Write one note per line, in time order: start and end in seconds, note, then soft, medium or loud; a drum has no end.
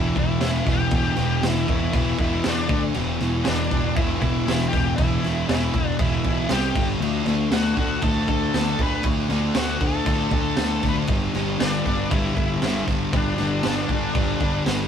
0.00 0.11 E1 loud
0.00 0.14 E2 loud
0.00 0.16 B2 loud
0.00 0.16 E3 loud
0.00 0.16 E4 loud
0.16 0.36 E1 medium
0.16 0.39 E2 loud
0.16 0.41 B2 medium
0.16 0.42 E3 loud
0.16 0.70 E4 loud
0.16 kick medium
0.16 crash medium
0.39 0.60 E1 loud
0.39 0.65 E2 loud
0.39 0.66 B2 loud
0.39 0.67 E3 loud
0.39 snare loud
0.39 crash medium
0.66 0.87 E1 medium
0.66 0.90 E2 medium
0.66 0.91 B2 medium
0.66 0.92 E3 loud
0.66 kick medium
0.66 snare soft
0.66 crash medium
0.71 0.93 G4 loud
0.91 1.12 E1 medium
0.91 1.15 E2 medium
0.91 1.15 B2 loud
0.91 1.17 E3 loud
0.91 kick loud
0.91 crash medium
0.95 1.46 G4 loud
1.16 1.38 E1 medium
1.16 1.40 E2 medium
1.16 1.41 B2 medium
1.16 1.42 E3 medium
1.16 snare soft
1.16 crash medium
1.42 1.63 E1 loud
1.42 1.66 E2 medium
1.42 1.67 B2 medium
1.42 1.68 E3 loud
1.42 snare loud
1.42 crash loud
1.48 1.95 E4 loud
1.67 1.88 E1 medium
1.67 1.93 E2 medium
1.67 1.93 B2 medium
1.67 1.94 E3 loud
1.67 kick medium
1.67 crash medium
1.93 2.14 E1 loud
1.93 2.18 E2 medium
1.93 2.19 B2 loud
1.93 2.20 E3 loud
1.93 2.18 E4 loud
1.93 kick loud
1.93 crash loud
2.18 2.39 E1 medium
2.18 2.43 E2 loud
2.18 2.45 B2 medium
2.18 2.46 E3 medium
2.18 2.46 E4 medium
2.18 kick medium
2.18 crash medium
2.44 2.68 E2 loud
2.44 2.65 E2 loud
2.44 2.69 B2 loud
2.44 2.69 E3 loud
2.44 snare loud
2.44 crash medium
2.48 2.82 D4 medium
2.69 2.89 D2 medium
2.69 2.93 D3 loud
2.69 2.94 A3 loud
2.69 2.94 D4 loud
2.69 kick loud
2.69 crash medium
2.94 3.16 E1 loud
2.94 3.20 E2 medium
2.94 3.20 B2 loud
2.94 3.22 E3 loud
2.94 crash medium
3.20 3.41 E1 medium
3.20 3.46 E2 medium
3.20 3.47 B2 medium
3.20 3.48 E3 loud
3.20 snare soft
3.20 crash medium
3.44 3.66 E1 loud
3.44 3.70 E2 loud
3.44 3.71 B2 loud
3.44 3.97 D4 medium
3.44 snare loud
3.44 crash medium
3.49 3.72 E3 loud
3.71 3.91 E1 medium
3.71 3.95 E2 medium
3.71 3.96 B2 loud
3.71 3.97 E3 loud
3.71 kick medium
3.71 crash medium
3.96 4.16 E1 loud
3.96 4.21 E2 loud
3.96 4.22 B2 medium
3.96 4.23 E3 loud
3.96 4.19 E4 loud
3.96 kick loud
3.96 crash medium
4.20 4.42 E1 medium
4.20 4.46 E2 medium
4.20 4.48 B2 loud
4.20 4.48 E3 loud
4.20 4.68 E4 loud
4.20 kick medium
4.20 crash medium
4.47 4.67 E1 loud
4.47 4.72 E2 medium
4.47 4.74 B2 loud
4.47 4.74 E3 loud
4.47 snare loud
4.47 crash medium
4.69 4.94 G4 medium
4.73 4.93 E1 medium
4.73 4.97 E2 medium
4.73 4.98 B2 medium
4.73 4.98 E3 loud
4.73 kick loud
4.73 snare soft
4.73 crash medium
4.96 5.18 E1 loud
4.96 5.23 E2 loud
4.96 5.24 B2 loud
4.96 5.25 E3 loud
4.96 5.44 E4 loud
4.96 kick loud
4.96 crash medium
5.23 5.43 E1 medium
5.23 5.47 E2 medium
5.23 5.48 B2 medium
5.23 5.49 E3 loud
5.23 snare soft
5.23 crash medium
5.49 5.69 E1 loud
5.49 5.73 E2 medium
5.49 5.74 B2 medium
5.49 5.74 E3 medium
5.49 5.96 E4 medium
5.49 snare loud
5.49 crash medium
5.74 5.94 E1 medium
5.74 5.97 E2 medium
5.74 5.98 B2 medium
5.74 5.99 E3 loud
5.74 kick medium
5.74 crash medium
5.99 6.19 E1 medium
5.99 6.23 E2 loud
5.99 6.23 B2 loud
5.99 6.24 E3 loud
5.99 6.52 E4 loud
5.99 kick loud
5.99 crash medium
6.24 6.45 B1 medium
6.24 6.48 E2 medium
6.24 6.48 B2 medium
6.24 6.48 E3 loud
6.24 kick medium
6.24 crash medium
6.49 6.70 C2 medium
6.49 6.73 C3 medium
6.49 6.74 G3 loud
6.49 6.74 C4 loud
6.49 6.87 G4 medium
6.49 snare loud
6.49 crash medium
6.75 6.95 G1 loud
6.75 6.99 G2 loud
6.75 7.00 D3 medium
6.75 7.00 G3 loud
6.75 kick loud
6.75 crash loud
7.00 7.21 D2 loud
7.00 7.25 D3 loud
7.00 7.26 A3 loud
7.00 7.28 D4 loud
7.00 crash medium
7.25 7.45 D2 medium
7.25 7.51 D3 medium
7.25 7.52 A3 medium
7.25 7.53 D4 loud
7.25 snare soft
7.25 crash medium
7.51 7.71 D2 loud
7.51 7.79 D3 medium
7.51 7.79 A3 loud
7.51 7.80 D4 loud
7.51 7.76 F#4 medium
7.51 snare loud
7.51 crash medium
7.77 7.97 D2 medium
7.77 8.02 D3 loud
7.77 8.02 A3 medium
7.77 8.04 D4 loud
7.77 8.01 F#4 medium
7.77 kick medium
7.77 crash medium
8.02 8.23 D2 loud
8.02 8.28 D3 loud
8.02 8.29 A3 medium
8.02 8.30 D4 loud
8.02 8.28 A4 loud
8.02 kick loud
8.02 crash medium
8.28 8.48 D2 medium
8.28 8.53 D3 medium
8.28 8.54 A3 medium
8.28 8.56 D4 loud
8.28 8.81 A4 loud
8.28 kick medium
8.28 crash medium
8.54 8.74 D2 medium
8.54 8.79 D3 loud
8.54 8.81 A3 loud
8.54 8.81 D4 loud
8.54 snare loud
8.54 crash medium
8.79 8.99 D2 medium
8.79 9.04 D3 medium
8.79 9.05 A3 medium
8.79 9.06 D4 medium
8.79 9.05 B4 medium
8.79 kick medium
8.79 crash medium
9.03 9.24 D2 loud
9.03 9.28 D3 loud
9.03 9.29 A3 loud
9.03 9.31 D4 loud
9.03 kick loud
9.03 crash medium
9.29 9.49 D2 medium
9.29 9.54 D3 medium
9.29 9.55 A3 medium
9.29 9.55 D4 medium
9.29 snare soft
9.29 crash medium
9.55 9.75 D2 loud
9.55 9.79 D3 medium
9.55 9.79 A3 medium
9.55 9.82 D4 medium
9.55 snare loud
9.55 crash loud
9.59 9.83 F#4 medium
9.80 10.01 D2 medium
9.80 10.04 D3 loud
9.80 10.05 A3 loud
9.80 10.07 D4 loud
9.80 kick medium
9.80 crash medium
9.87 10.36 A4 loud
10.05 10.26 D2 medium
10.05 10.31 D3 loud
10.05 10.31 A3 loud
10.05 10.33 D4 loud
10.05 kick loud
10.05 crash loud
10.31 10.51 D2 loud
10.31 10.56 D3 medium
10.31 10.57 A3 loud
10.31 10.58 D4 loud
10.31 kick medium
10.31 crash medium
10.41 10.84 A4 loud
10.57 10.78 D2 loud
10.57 10.82 D3 medium
10.57 10.82 A3 loud
10.57 10.84 D4 loud
10.57 snare loud
10.57 crash medium
10.83 11.03 D2 medium
10.83 11.07 D3 medium
10.83 11.07 A3 medium
10.83 14.35 D4 medium
10.83 kick medium
10.83 snare soft
10.83 crash medium
10.89 10.95 B4 loud
11.07 11.29 G1 loud
11.07 11.33 G2 loud
11.07 11.33 D3 loud
11.07 11.34 G3 loud
11.07 kick loud
11.07 crash loud
11.34 11.55 G1 loud
11.34 11.59 G2 medium
11.34 11.59 D3 medium
11.34 11.60 G3 medium
11.34 snare soft
11.34 crash medium
11.59 11.81 G1 loud
11.59 11.86 G2 loud
11.59 11.86 D3 medium
11.59 11.87 G3 loud
11.59 12.12 D4 loud
11.59 snare loud
11.59 crash loud
11.86 12.06 G1 medium
11.86 12.09 G2 loud
11.86 12.10 D3 loud
11.86 12.12 G3 medium
11.86 kick medium
11.86 crash medium
12.10 12.31 G1 loud
12.10 12.35 G2 medium
12.10 12.37 D3 loud
12.10 12.38 G3 loud
12.10 12.34 E4 loud
12.10 kick loud
12.10 crash medium
12.35 12.56 G1 medium
12.35 12.60 G2 medium
12.35 12.61 D3 loud
12.35 12.63 G3 loud
12.35 12.83 E4 loud
12.35 kick medium
12.35 crash medium
12.62 12.82 G1 loud
12.62 12.85 G2 medium
12.62 12.87 D3 loud
12.62 12.88 G3 loud
12.62 snare loud
12.62 crash medium
12.87 13.07 G1 medium
12.87 13.10 G2 medium
12.87 13.12 D3 medium
12.87 13.12 G3 loud
12.87 kick medium
12.87 snare soft
12.87 crash medium
13.11 13.33 G1 loud
13.11 13.37 G2 loud
13.11 13.38 D3 loud
13.11 13.39 G3 loud
13.11 14.62 D4 loud
13.11 kick loud
13.11 crash medium
13.38 13.60 G1 medium
13.38 13.62 G2 medium
13.38 13.63 D3 medium
13.38 13.64 G3 loud
13.38 snare soft
13.38 crash medium
13.63 13.85 G1 loud
13.63 13.88 G2 medium
13.63 13.90 D3 medium
13.63 13.90 G3 medium
13.63 snare loud
13.63 crash medium
13.89 14.09 G1 medium
13.89 14.14 G2 loud
13.89 14.15 D3 loud
13.89 14.16 G3 loud
13.89 kick medium
13.89 crash medium
14.15 14.35 G1 medium
14.15 14.39 G2 loud
14.15 14.40 D3 loud
14.15 14.41 G3 loud
14.15 kick loud
14.15 crash medium
14.40 14.61 G1 medium
14.40 14.65 G2 medium
14.40 14.67 D3 loud
14.40 14.67 G3 medium
14.40 kick medium
14.40 crash medium
14.66 14.87 G1 loud
14.66 14.88 G2 loud
14.66 14.88 D3 medium
14.66 14.88 G3 loud
14.66 snare loud
14.66 crash medium